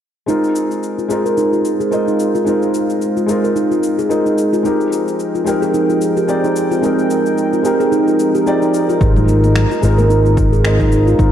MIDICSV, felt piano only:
0, 0, Header, 1, 2, 480
1, 0, Start_track
1, 0, Tempo, 545455
1, 250, Time_signature, 4, 2, 24, 8
1, 9961, End_track
2, 0, Start_track
2, 0, Title_t, "Felt piano"
2, 0, Program_c, 0, 0
2, 232, Note_on_c, 0, 56, 70
2, 240, Note_on_c, 0, 60, 66
2, 247, Note_on_c, 0, 63, 70
2, 258, Note_on_c, 0, 65, 69
2, 266, Note_on_c, 0, 70, 77
2, 393, Control_c, 0, 64, 127
2, 936, Note_off_c, 0, 56, 0
2, 940, Note_off_c, 0, 60, 0
2, 944, Note_off_c, 0, 63, 0
2, 949, Note_off_c, 0, 65, 0
2, 953, Note_off_c, 0, 70, 0
2, 954, Note_on_c, 0, 56, 77
2, 962, Note_on_c, 0, 60, 70
2, 970, Note_on_c, 0, 63, 69
2, 979, Note_on_c, 0, 65, 72
2, 988, Note_on_c, 0, 70, 83
2, 1657, Note_off_c, 0, 56, 0
2, 1661, Note_off_c, 0, 60, 0
2, 1665, Note_off_c, 0, 63, 0
2, 1669, Note_off_c, 0, 65, 0
2, 1674, Note_off_c, 0, 70, 0
2, 1680, Note_on_c, 0, 56, 76
2, 1683, Note_on_c, 0, 60, 70
2, 1688, Note_on_c, 0, 63, 70
2, 1692, Note_on_c, 0, 65, 69
2, 1697, Note_on_c, 0, 75, 85
2, 2140, Note_off_c, 0, 56, 0
2, 2141, Note_off_c, 0, 60, 0
2, 2144, Note_off_c, 0, 63, 0
2, 2146, Note_off_c, 0, 65, 0
2, 2148, Note_off_c, 0, 75, 0
2, 2153, Note_on_c, 0, 56, 76
2, 2161, Note_on_c, 0, 60, 68
2, 2171, Note_on_c, 0, 63, 64
2, 2179, Note_on_c, 0, 65, 66
2, 2188, Note_on_c, 0, 70, 81
2, 2856, Note_off_c, 0, 56, 0
2, 2860, Note_off_c, 0, 60, 0
2, 2865, Note_off_c, 0, 63, 0
2, 2869, Note_off_c, 0, 65, 0
2, 2872, Note_on_c, 0, 56, 80
2, 2874, Note_off_c, 0, 70, 0
2, 2881, Note_on_c, 0, 60, 69
2, 2889, Note_on_c, 0, 63, 75
2, 2899, Note_on_c, 0, 65, 75
2, 2908, Note_on_c, 0, 70, 83
2, 3576, Note_off_c, 0, 56, 0
2, 3581, Note_off_c, 0, 60, 0
2, 3585, Note_off_c, 0, 63, 0
2, 3589, Note_off_c, 0, 65, 0
2, 3594, Note_off_c, 0, 70, 0
2, 3601, Note_on_c, 0, 56, 76
2, 3605, Note_on_c, 0, 60, 74
2, 3610, Note_on_c, 0, 63, 75
2, 3613, Note_on_c, 0, 65, 72
2, 3618, Note_on_c, 0, 75, 83
2, 4059, Note_off_c, 0, 56, 0
2, 4063, Note_off_c, 0, 60, 0
2, 4065, Note_off_c, 0, 63, 0
2, 4067, Note_off_c, 0, 65, 0
2, 4069, Note_off_c, 0, 75, 0
2, 4073, Note_on_c, 0, 56, 75
2, 4082, Note_on_c, 0, 60, 69
2, 4089, Note_on_c, 0, 63, 65
2, 4098, Note_on_c, 0, 67, 75
2, 4099, Control_c, 0, 64, 0
2, 4107, Note_on_c, 0, 70, 82
2, 4258, Control_c, 0, 64, 127
2, 4776, Note_off_c, 0, 56, 0
2, 4781, Note_off_c, 0, 60, 0
2, 4784, Note_off_c, 0, 63, 0
2, 4789, Note_off_c, 0, 67, 0
2, 4791, Note_on_c, 0, 56, 77
2, 4794, Note_off_c, 0, 70, 0
2, 4800, Note_on_c, 0, 60, 72
2, 4809, Note_on_c, 0, 63, 74
2, 4817, Note_on_c, 0, 79, 74
2, 4827, Note_on_c, 0, 70, 89
2, 5495, Note_off_c, 0, 56, 0
2, 5500, Note_off_c, 0, 60, 0
2, 5504, Note_off_c, 0, 63, 0
2, 5509, Note_off_c, 0, 79, 0
2, 5514, Note_off_c, 0, 70, 0
2, 5520, Note_on_c, 0, 56, 84
2, 5524, Note_on_c, 0, 60, 73
2, 5529, Note_on_c, 0, 63, 70
2, 5534, Note_on_c, 0, 79, 74
2, 5539, Note_on_c, 0, 74, 83
2, 5980, Note_off_c, 0, 56, 0
2, 5982, Note_off_c, 0, 60, 0
2, 5985, Note_off_c, 0, 63, 0
2, 5987, Note_off_c, 0, 79, 0
2, 5989, Note_off_c, 0, 74, 0
2, 5994, Note_on_c, 0, 56, 74
2, 6003, Note_on_c, 0, 60, 70
2, 6012, Note_on_c, 0, 63, 73
2, 6020, Note_on_c, 0, 79, 66
2, 6029, Note_on_c, 0, 70, 82
2, 6697, Note_off_c, 0, 56, 0
2, 6701, Note_off_c, 0, 60, 0
2, 6706, Note_off_c, 0, 63, 0
2, 6710, Note_off_c, 0, 79, 0
2, 6711, Note_on_c, 0, 56, 77
2, 6714, Note_off_c, 0, 70, 0
2, 6721, Note_on_c, 0, 60, 77
2, 6729, Note_on_c, 0, 63, 73
2, 6738, Note_on_c, 0, 79, 75
2, 6746, Note_on_c, 0, 70, 93
2, 7415, Note_off_c, 0, 56, 0
2, 7420, Note_off_c, 0, 60, 0
2, 7424, Note_off_c, 0, 63, 0
2, 7429, Note_off_c, 0, 79, 0
2, 7433, Note_off_c, 0, 70, 0
2, 7441, Note_on_c, 0, 56, 73
2, 7446, Note_on_c, 0, 60, 73
2, 7450, Note_on_c, 0, 63, 77
2, 7454, Note_on_c, 0, 79, 73
2, 7459, Note_on_c, 0, 74, 92
2, 7898, Note_off_c, 0, 56, 0
2, 7903, Note_off_c, 0, 60, 0
2, 7905, Note_off_c, 0, 63, 0
2, 7907, Note_off_c, 0, 79, 0
2, 7909, Note_off_c, 0, 74, 0
2, 7911, Note_on_c, 0, 56, 76
2, 7919, Note_on_c, 0, 60, 71
2, 7929, Note_on_c, 0, 63, 70
2, 7936, Note_on_c, 0, 65, 68
2, 7941, Control_c, 0, 64, 0
2, 7945, Note_on_c, 0, 70, 83
2, 8104, Control_c, 0, 64, 127
2, 8615, Note_off_c, 0, 56, 0
2, 8620, Note_off_c, 0, 60, 0
2, 8624, Note_off_c, 0, 63, 0
2, 8628, Note_off_c, 0, 65, 0
2, 8632, Note_on_c, 0, 56, 79
2, 8633, Note_off_c, 0, 70, 0
2, 8641, Note_on_c, 0, 60, 70
2, 8648, Note_on_c, 0, 63, 76
2, 8659, Note_on_c, 0, 65, 67
2, 8667, Note_on_c, 0, 70, 86
2, 9336, Note_off_c, 0, 56, 0
2, 9340, Note_off_c, 0, 60, 0
2, 9344, Note_off_c, 0, 63, 0
2, 9349, Note_off_c, 0, 65, 0
2, 9353, Note_off_c, 0, 70, 0
2, 9362, Note_on_c, 0, 56, 84
2, 9366, Note_on_c, 0, 60, 69
2, 9370, Note_on_c, 0, 63, 75
2, 9375, Note_on_c, 0, 65, 76
2, 9379, Note_on_c, 0, 75, 87
2, 9819, Note_off_c, 0, 56, 0
2, 9823, Note_off_c, 0, 60, 0
2, 9825, Note_off_c, 0, 63, 0
2, 9827, Note_off_c, 0, 65, 0
2, 9829, Note_off_c, 0, 75, 0
2, 9832, Note_on_c, 0, 56, 77
2, 9840, Note_on_c, 0, 60, 70
2, 9850, Note_on_c, 0, 63, 71
2, 9858, Note_on_c, 0, 65, 73
2, 9867, Note_on_c, 0, 70, 86
2, 9961, Note_off_c, 0, 56, 0
2, 9961, Note_off_c, 0, 60, 0
2, 9961, Note_off_c, 0, 63, 0
2, 9961, Note_off_c, 0, 65, 0
2, 9961, Note_off_c, 0, 70, 0
2, 9961, End_track
0, 0, End_of_file